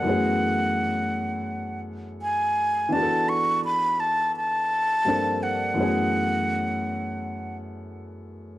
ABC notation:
X:1
M:4/4
L:1/8
Q:"Swing 16ths" 1/4=84
K:F#m
V:1 name="Flute"
f4- f z g2 | a c' b a a3 f- | f4- f z3 |]
V:2 name="Upright piano"
[F,,E,A,B,CG]8 | [E,B,DFGA]6 [=G,,=F,_B,=CDA]2 | [F,,E,A,B,CG]8 |]